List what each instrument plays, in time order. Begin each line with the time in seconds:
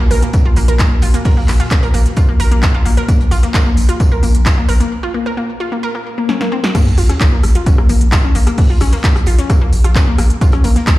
Already playing: synth drone A#2
0.00 sub bass A#1
0.11 sub bass A#1, synth arpeggio sound A#4, open hi-hat, tambourine
0.23 synth arpeggio sound A#3, closed hi-hat
0.33 kick, closed hi-hat, tambourine
0.45 sub bass A#1, synth arpeggio sound F4
0.56 sub bass A#1, synth arpeggio sound A#3, open hi-hat, tambourine
0.68 sub bass A#1, synth arpeggio sound A#4, closed hi-hat
0.79 synth arpeggio sound A#3, kick, snare, clap, closed hi-hat, tambourine
0.91 sub bass A#1
1.02 sub bass A#1, synth arpeggio sound F4, open hi-hat, tambourine
1.14 synth arpeggio sound A#3, closed hi-hat
1.25 synth arpeggio sound A#4, kick, closed hi-hat, open hi-hat
1.37 sub bass A#1, synth arpeggio sound A#3
1.48 sub bass A#1, clap, open hi-hat, tambourine
1.60 synth arpeggio sound F4, closed hi-hat
1.71 synth arpeggio sound A#3, kick, snare, clap, closed hi-hat, tambourine
1.83 sub bass A#1, synth arpeggio sound A#4, closed hi-hat
1.94 sub bass A#1, synth arpeggio sound A#3, open hi-hat, tambourine
2.06 snare, closed hi-hat
2.16 synth arpeggio sound F4, kick, closed hi-hat, tambourine
2.29 sub bass A#1, synth arpeggio sound A#3
2.40 sub bass A#1, synth arpeggio sound A#4, open hi-hat, tambourine
2.51 sub bass A#1, synth arpeggio sound A#3, closed hi-hat
2.63 kick, snare, clap, closed hi-hat, tambourine
2.74 sub bass A#1, synth arpeggio sound F4
2.85 sub bass A#1, synth arpeggio sound A#3, open hi-hat, tambourine
2.97 synth arpeggio sound A#4, closed hi-hat
3.08 synth arpeggio sound A#3, kick, closed hi-hat, tambourine
3.20 sub bass A#1, closed hi-hat
3.31 sub bass A#1, synth arpeggio sound F4, open hi-hat, tambourine
3.43 synth arpeggio sound A#3, snare, closed hi-hat
3.54 synth arpeggio sound A#4, kick, snare, clap, closed hi-hat, tambourine
3.66 sub bass A#1, synth arpeggio sound A#3
3.77 sub bass A#1, open hi-hat, tambourine
3.89 synth arpeggio sound F4, closed hi-hat
4.00 synth arpeggio sound A#3, kick, closed hi-hat, tambourine
4.12 sub bass A#1, synth arpeggio sound A#4
4.23 sub bass A#1, synth arpeggio sound A#3, open hi-hat, tambourine
4.35 sub bass A#1, closed hi-hat
4.46 synth arpeggio sound F4, kick, snare, clap, closed hi-hat, tambourine
4.57 sub bass A#1, synth arpeggio sound A#3
4.68 sub bass A#1, synth arpeggio sound A#4, open hi-hat, tambourine
4.80 synth arpeggio sound A#3, closed hi-hat
5.03 synth arpeggio sound F4
5.14 synth arpeggio sound A#3
5.26 synth arpeggio sound A#4
5.37 synth arpeggio sound A#3
5.60 synth arpeggio sound F4
5.72 synth arpeggio sound A#3
5.83 synth arpeggio sound A#4, swell
5.95 synth arpeggio sound A#3
6.18 synth arpeggio sound A#3
6.29 synth arpeggio sound C#4, snare
6.41 synth arpeggio sound A#3, snare
6.52 synth arpeggio sound C4
6.64 synth arpeggio sound F#4, snare
6.75 synth arpeggio sound A#3, kick, cross-stick, closed hi-hat, tambourine, crash, sub drop
6.87 sub bass A#1, closed hi-hat
6.98 sub bass A#1, synth arpeggio sound F4, open hi-hat, tambourine
7.09 synth arpeggio sound C#4, cross-stick, snare, closed hi-hat
7.20 synth arpeggio sound A#3, kick, snare, clap, closed hi-hat, tambourine
7.32 sub bass A#1, synth arpeggio sound A#3
7.43 sub bass A#1, cross-stick, open hi-hat, tambourine
7.55 synth arpeggio sound F4, closed hi-hat
7.66 synth arpeggio sound C#4, kick, closed hi-hat, tambourine
7.78 sub bass A#1, synth arpeggio sound A#3, cross-stick
7.89 sub bass A#1, synth arpeggio sound A#3, open hi-hat, tambourine
8.01 sub bass A#1, closed hi-hat
8.12 synth arpeggio sound F4, kick, cross-stick, snare, clap, closed hi-hat, tambourine
8.24 sub bass A#1, synth arpeggio sound C#4
8.35 sub bass A#1, synth arpeggio sound A#3, open hi-hat, tambourine
8.47 synth arpeggio sound A#3, cross-stick, closed hi-hat
8.58 kick, closed hi-hat, open hi-hat
8.70 sub bass A#1, synth arpeggio sound F4
8.80 sub bass A#1, synth arpeggio sound C#4, cross-stick, open hi-hat, tambourine
8.93 synth arpeggio sound A#3, closed hi-hat
9.04 synth arpeggio sound A#3, kick, snare, clap, closed hi-hat, tambourine
9.15 sub bass A#1, cross-stick, closed hi-hat
9.26 sub bass A#1, synth arpeggio sound F4, open hi-hat, tambourine
9.38 synth arpeggio sound C#4, snare, closed hi-hat
9.50 synth arpeggio sound A#3, kick, cross-stick, closed hi-hat, tambourine
9.61 sub bass A#1, synth arpeggio sound A#3
9.72 sub bass A#1, open hi-hat, tambourine
9.84 sub bass A#1, synth arpeggio sound F4, cross-stick, closed hi-hat
9.95 synth arpeggio sound C#4, kick, snare, clap, closed hi-hat, tambourine
10.07 sub bass A#1, synth arpeggio sound A#3
10.18 sub bass A#1, synth arpeggio sound A#3, cross-stick, open hi-hat, tambourine
10.30 closed hi-hat
10.41 synth arpeggio sound F4, kick, closed hi-hat, tambourine
10.52 sub bass A#1, synth arpeggio sound C#4, cross-stick, closed hi-hat
10.64 sub bass A#1, synth arpeggio sound A#3, open hi-hat, tambourine
10.76 synth arpeggio sound A#3, snare, closed hi-hat
10.87 kick, cross-stick, snare, clap, closed hi-hat, tambourine